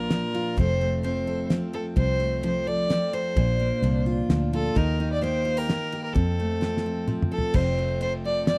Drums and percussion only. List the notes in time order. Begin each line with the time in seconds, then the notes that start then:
0.10 snare, ride
0.34 ride
0.57 kick, ride
1.04 ride
1.50 snare, ride
1.73 ride
1.97 kick, ride
2.43 ride
2.90 snare, ride
3.13 ride
3.37 kick, ride
3.84 ride
4.30 snare, ride
4.53 ride
4.76 kick, ride
5.23 ride
5.69 snare, ride
5.92 ride
6.16 kick, ride
6.62 snare
6.77 snare
7.08 mid tom
7.22 mid tom
7.38 floor tom
7.54 kick, crash
8.01 ride
8.47 snare, ride